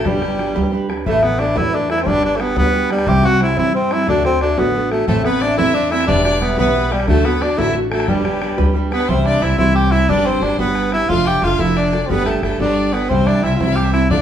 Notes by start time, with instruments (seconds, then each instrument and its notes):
0.05 upright bass G1, steel-string acoustic guitar G3 D4 G4 B4, tenor saxophone G3, fiddle G4, bodhran
0.21 steel-string acoustic guitar D4 G4 B4, bodhran
0.38 steel-string acoustic guitar G3 D4 G4 B4, bodhran
0.48 bodhran
0.55 upright bass D2, steel-string acoustic guitar G3 D4 G4 B4, bodhran
0.71 steel-string acoustic guitar G3 D4 G4 B4, bodhran
0.89 steel-string acoustic guitar D4 G4 B4, bodhran
1.06 upright bass A1, steel-string acoustic guitar A2 E3 A3 E4 A4 B4, tenor saxophone A3, bodhran
1.22 steel-string acoustic guitar A3 E4 A4 B4, tenor saxophone B3, bodhran
1.38 steel-string acoustic guitar A3 E4 A4 B4, tenor saxophone D4, bodhran
1.48 bodhran
1.56 upright bass E2, steel-string acoustic guitar A2 E3 A3 E4 A4 B4, tenor saxophone E4, bodhran
1.72 steel-string acoustic guitar A3 E4 A4 B4, tenor saxophone D4, bodhran
1.89 steel-string acoustic guitar A3 E4 A4 B4, tenor saxophone E4, bodhran
1.98 bodhran
2.03 upright bass G1, steel-string acoustic guitar G3 D4, tenor saxophone C4, bodhran
2.07 tenor saxophone D4, steel-string acoustic guitar G4 B4
2.22 tenor saxophone D4, steel-string acoustic guitar D4 G4 B4, bodhran
2.36 steel-string acoustic guitar G3, tenor saxophone A3, bodhran
2.40 tenor saxophone B3, steel-string acoustic guitar D4 G4 B4
2.48 bodhran
2.56 upright bass D2, steel-string acoustic guitar G3 D4 G4 B4, tenor saxophone B3, bodhran
2.72 steel-string acoustic guitar G3 D4 G4 B4, bodhran
2.89 tenor saxophone G3, steel-string acoustic guitar D4 G4 B4, bodhran
2.99 bodhran
3.06 upright bass C2, steel-string acoustic guitar C3 E3 G3 C4 E4 C5, tenor saxophone G4, bodhran
3.23 steel-string acoustic guitar G3 C4 E4 C5, tenor saxophone F#4, bodhran
3.40 steel-string acoustic guitar G3 C4 E4 C5, tenor saxophone E4, bodhran
3.49 bodhran
3.57 upright bass G2, steel-string acoustic guitar C3 E3 G3 C4 E4 C5, tenor saxophone E4, bodhran
3.73 steel-string acoustic guitar G3 C4 E4 C5, tenor saxophone C4
3.90 steel-string acoustic guitar G3 C4 E4 C5, tenor saxophone E4, bodhran
3.99 bodhran
4.07 upright bass D2, steel-string acoustic guitar D3 A3 D4 F#4 A4, tenor saxophone D4, bodhran
4.23 tenor saxophone C4, steel-string acoustic guitar D4 F#4 A4, bodhran
4.40 steel-string acoustic guitar A3 D4 F#4 A4, tenor saxophone D4, bodhran
4.50 bodhran
4.57 upright bass A1, steel-string acoustic guitar D3 A3 D4 F#4 A4, tenor saxophone B3, bodhran
4.74 steel-string acoustic guitar A3 D4 F#4 A4, bodhran
4.91 tenor saxophone A3, steel-string acoustic guitar D4 F#4 A4, bodhran
5.07 upright bass A1, steel-string acoustic guitar A2 E3 A3 C4 E4 A4, tenor saxophone A3, fiddle A4, bodhran
5.23 steel-string acoustic guitar A3 C4 E4 A4, tenor saxophone B3, fiddle B4, bodhran
5.40 steel-string acoustic guitar A3 C4 E4 A4, tenor saxophone D4, fiddle D5, bodhran
5.50 bodhran
5.57 upright bass E2, steel-string acoustic guitar A2 E3 A3 C4 E4 A4, tenor saxophone E4, fiddle E5, bodhran
5.73 steel-string acoustic guitar A3 C4 E4 A4, tenor saxophone D4, bodhran
5.89 steel-string acoustic guitar A3 C4 E4 A4, tenor saxophone E4, fiddle E5, bodhran
6.01 bodhran
6.07 upright bass E1, steel-string acoustic guitar E3 G3 E4 G4 B4, tenor saxophone D4, fiddle D5, bodhran
6.24 tenor saxophone D4, steel-string acoustic guitar E4 G4 B4, bodhran
6.40 steel-string acoustic guitar G3 E4 G4 B4, tenor saxophone B3, bodhran
6.50 bodhran
6.57 upright bass B1, steel-string acoustic guitar E3 G3 E4 G4 B4, tenor saxophone B3, fiddle B4, bodhran
6.73 steel-string acoustic guitar G3 E4 G4 B4, bodhran
6.90 tenor saxophone G3, steel-string acoustic guitar E4 G4 B4, fiddle G4, bodhran
7.00 bodhran
7.07 upright bass D2, steel-string acoustic guitar D3 A3 D4 F#4 A4, tenor saxophone A3, fiddle A4, bodhran
7.24 tenor saxophone B3, steel-string acoustic guitar D4 F#4 A4, fiddle B4, bodhran
7.40 steel-string acoustic guitar A3 D4 F#4 A4, tenor saxophone D4, fiddle D5, bodhran
7.50 bodhran
7.57 upright bass A1, steel-string acoustic guitar D3 A3 D4 F#4 A4, tenor saxophone E4, fiddle E5, bodhran
7.73 steel-string acoustic guitar A3 D4 F#4 A4, bodhran
7.91 tenor saxophone A3, steel-string acoustic guitar D4 F#4 A4, fiddle A4, bodhran
8.00 bodhran
8.08 upright bass G1, steel-string acoustic guitar G3 D4 G4 B4, tenor saxophone G3, fiddle G4, bodhran
8.24 steel-string acoustic guitar D4 G4 B4, bodhran
8.40 steel-string acoustic guitar G3 D4 G4 B4, bodhran
8.50 bodhran
8.57 upright bass D2, steel-string acoustic guitar G3 D4 G4 B4, bodhran
8.73 steel-string acoustic guitar G3 D4 G4 B4, bodhran
8.91 tenor saxophone B3, steel-string acoustic guitar D4 G4 B4, fiddle B4, bodhran
9.01 bodhran
9.08 upright bass C2, steel-string acoustic guitar C3 E3 G3 C4 E4 C5, tenor saxophone C4, fiddle C5, bodhran
9.21 tenor saxophone C4
9.26 tenor saxophone D4, fiddle D5, bodhran
9.41 upright bass C2, steel-string acoustic guitar G3 C4 E4 C5, tenor saxophone E4, fiddle E5, bodhran
9.58 upright bass C2, steel-string acoustic guitar C3 E3 G3 C4 E4 C5, tenor saxophone E4, fiddle E5, bodhran
9.75 tenor saxophone G4, fiddle G5, bodhran
9.91 steel-string acoustic guitar G3 C4 E4 C5, tenor saxophone E4, fiddle E5, bodhran
10.08 upright bass G1, steel-string acoustic guitar G3 D4 G4 B4, tenor saxophone D4, fiddle D5, bodhran
10.25 tenor saxophone C4, fiddle C5, bodhran
10.41 upright bass G1, steel-string acoustic guitar G3 D4 G4 B4, tenor saxophone D4, bodhran
10.58 upright bass G1, steel-string acoustic guitar G3 D4 G4 B4, tenor saxophone B3, fiddle B4, bodhran
10.75 bodhran
10.92 steel-string acoustic guitar D4 G4 B4, tenor saxophone E4, fiddle E5, bodhran
11.09 upright bass F1, steel-string acoustic guitar F3 A3 D4 F4 A4, tenor saxophone F4, fiddle F5, bodhran
11.25 tenor saxophone G4, fiddle G5, bodhran
11.42 upright bass F1, steel-string acoustic guitar A3 D4 F4 A4, tenor saxophone F4, fiddle F5, bodhran
11.59 upright bass F1, steel-string acoustic guitar F3 A3 D4 F4 A4, tenor saxophone E4, fiddle E5, bodhran
11.76 tenor saxophone D4, fiddle D5, bodhran
11.93 steel-string acoustic guitar D4 F4 A4, bodhran
12.06 upright bass G1, steel-string acoustic guitar G3 B3, tenor saxophone C4, bodhran
12.10 tenor saxophone B3, steel-string acoustic guitar D4 G4 A4, fiddle B4
12.26 tenor saxophone A3, fiddle A4, bodhran
12.42 upright bass G1, tenor saxophone A3, steel-string acoustic guitar B3 D4 G4 A4, fiddle A4, bodhran
12.59 upright bass G1, steel-string acoustic guitar G3 B3 D4 G4 A4, tenor saxophone D4, fiddle D5, bodhran
12.92 tenor saxophone B3, steel-string acoustic guitar D4 G4 A4, fiddle B4, bodhran
13.09 upright bass C2, steel-string acoustic guitar C3 E3 G3 C4 E4 C5, tenor saxophone C4, fiddle C5, bodhran
13.26 tenor saxophone D4, fiddle D5, bodhran
13.43 upright bass C2, steel-string acoustic guitar G3 C4 E4 C5, tenor saxophone E4, fiddle E5, bodhran
13.55 tenor saxophone E4 F4
13.60 upright bass C2, steel-string acoustic guitar C3 E3 G3 C4 E4 C5, fiddle E5, bodhran
13.72 tenor saxophone G4, fiddle F5
13.78 bodhran
13.83 fiddle E5
13.93 steel-string acoustic guitar G3 C4 E4 C5, tenor saxophone E4, fiddle E5, bodhran
14.10 upright bass D2, steel-string acoustic guitar D3 A3 D4 F4 A4, tenor saxophone D4, fiddle D5, bodhran